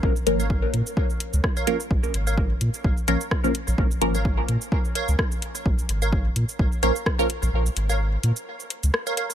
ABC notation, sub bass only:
X:1
M:4/4
L:1/16
Q:"Swing 16ths" 1/4=128
K:Bbm
V:1 name="Sub bass" clef=bass
B,,, z A,,,3 z B,, z4 D,, z4 | B,,, z A,,,3 z B,, z B,,, z B,,, z4 B,,, | B,,, z A,,,3 z B,, z4 D,, z4 | B,,, z A,,,3 z B,, z B,,, z B,,, z4 B,,, |
B,,, z A,,,3 z B,, z4 D,, z4 |]